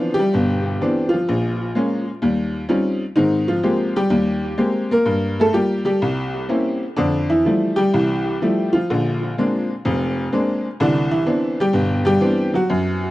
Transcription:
Already playing: E3 F3 B3 C4 D4 F4
0.14 G4
0.19 G3
0.34 G1 B2
0.81 E3 B3 C4 D4
1.09 F4
1.14 F3
1.29 A#1
1.75 G#3 A#3 C#4
2.22 D#2 G3
2.69 G3 C4 C#4 D#4 F4
3.16 G#2 D#3 C4 D#4
3.48 F3 F4
3.63 G#3 A#3 C4 G4
3.96 G3 G4
4.10 D#2 G3
4.58 G#3 A#3 C4 G4
4.91 A#3 A#4
5.06 G2
5.40 A3 A4
5.53 G3 A#3 F4 G4
5.85 G3 G4
6.02 C2
6.49 A#3 C4 C#4 E4
6.97 F2 D3 D4
7.30 E3 E4
7.46 F3 G3 A3 E4
7.76 G3 G4
7.94 C2 E3
8.42 F3 G3 A3 E4
8.73 F3 F4
8.90 A#1 D3
9.38 G#3 A#3 C4 D4
9.85 F1 F2
10.32 G#3 A#3 C4 D4
10.80 C2 D3 E3 D4
11.11 E3 E4
11.26 E3 B3 C4 D4
11.60 G3 G4
11.73 G1 B2
12.05 G3 G4
12.20 E3 B3 C4 D4
12.54 F#3 F#4
12.70 F#2

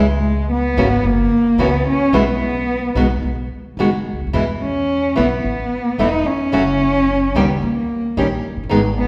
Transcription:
Already playing: C#2 G#3
0.51 B3
0.77 G#1 C#3 E3 A#3 C#4 F#4
1.04 F#1 A#3
1.58 C#2 C#3 E3 A#3 B3 C#4 F#4
1.88 C#4
2.12 B1 B2 E3 G#3 B3 E4
2.95 B1 B2 D#3 G#3 B3 F#4
3.22 B1
3.77 F#1 B2 D#3 G#3 B3 F#4
4.13 C#2
4.20 D2
4.27 D#2
4.33 E2 B2 E3 G#3 B3 E4
4.62 C#4
5.16 B1 E3 A3 B3 E4
5.44 A1
5.98 E1 E3 A3 B3 D#4 E4
6.26 C#4
6.52 F#1 C#3 F#3 A3 C#4 F#4
7.35 C#2 D#3 G3 B3 C#4 G4
7.62 D#2 A#3
8.17 A#1 D#3 G3 C#4 G4
8.51 F1
8.57 F#1
8.63 G1
8.69 G#1 D#3 G#3 B3 D#4 G#4
8.98 B3

